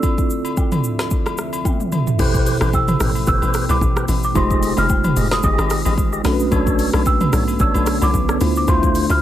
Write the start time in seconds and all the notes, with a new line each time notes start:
Already playing: D2 C3 F3 C4 E4 F4 A4 D5 E5 E6
0.03 kick, high agogo, shaker
0.18 kick, shaker
0.30 shaker
0.45 high agogo, shaker
0.57 kick, low woodblock, shaker
0.72 mid tom, high agogo, shaker
0.84 shaker
0.99 cross-stick, snare, high agogo, shaker
1.11 kick, shaker
1.26 cross-stick, high agogo, shaker
1.38 cross-stick, shaker
1.53 high agogo, shaker
1.65 kick, high tom, low woodblock, shaker
1.80 mid tom, shaker
1.92 mid tom, high agogo, shaker
2.07 floor tom, shaker
2.18 A1 B2 A3 E4 G4 A4 B4 C5 G5, kick, crash, high agogo, shaker
2.34 kick, shaker
2.46 open hi-hat, shaker
2.61 A1 G4 B4 C5, cross-stick, high agogo, shaker
2.73 E6, kick, low woodblock, shaker
2.88 mid tom, high agogo, shaker
3.00 A1 G4 B4 C5, cross-stick, open hi-hat, shaker
3.15 high agogo, shaker
3.27 G1 G4 B4 C5 E6, kick, shaker
3.42 A1, high agogo, shaker
3.54 cross-stick, open hi-hat, shaker
3.69 C2 G4 B4 C5 D6, high agogo, shaker
3.81 A1, kick, shaker
3.96 G4 B4 C5, cross-stick, shaker
4.08 A1, open hi-hat, high agogo, shaker
4.23 D6, shaker
4.34 F1 D#3 G#3 D#4 F4 G4 G#4 C5 D#5 C6, kick, high agogo, shaker
4.51 kick, shaker
4.63 open hi-hat, shaker
4.77 F1 G4 G#4 D#5 F6, high agogo, shaker
4.89 kick, low woodblock, shaker
5.04 mid tom, high agogo, shaker
5.16 F1 G4 G#4 D#5, open hi-hat, shaker
5.31 D#6, cross-stick, snare, high agogo, shaker
5.43 G1 G4 G#4 D#5 D#6, kick, shaker
5.58 G#1, cross-stick, high agogo, shaker
5.70 cross-stick, open hi-hat, shaker
5.85 A1 G4 G#4 D#5, high agogo, shaker
5.98 kick, shaker
6.12 G4 G#4 D#5, shaker
6.23 B1 D3 A3 B3 C#4 D4 F#4 A4, cross-stick, snare, open hi-hat, high agogo, shaker
6.33 B4
6.40 shaker
6.51 B1 D4 A4 C#5, kick, high agogo, shaker
6.67 kick, shaker
6.79 open hi-hat, shaker
6.93 B1 D4 A4 C#5, cross-stick, high agogo, shaker
7.06 E6, kick, low woodblock, shaker
7.21 mid tom, high agogo, shaker
7.33 B1 D4 A4 C#5, cross-stick, open hi-hat, shaker
7.48 high agogo, shaker
7.59 A1 D4 A4 C#5 E6, kick, shaker
7.74 B1, high agogo, shaker
7.86 cross-stick, open hi-hat, shaker
8.02 C2 D4 A4 C#5 D6, high agogo, shaker
8.14 B1, kick, shaker
8.29 D4 A4 C#5, cross-stick, shaker
8.40 D2 C3 D3 A3 D4 E4 F4 C5, open hi-hat, high agogo, shaker
8.56 D6, shaker
8.68 D2 E4 F4 C5 C6, kick, high agogo, shaker
8.83 kick, shaker
8.95 open hi-hat, shaker
9.10 D2 E4 F4 C5 F6, high agogo, shaker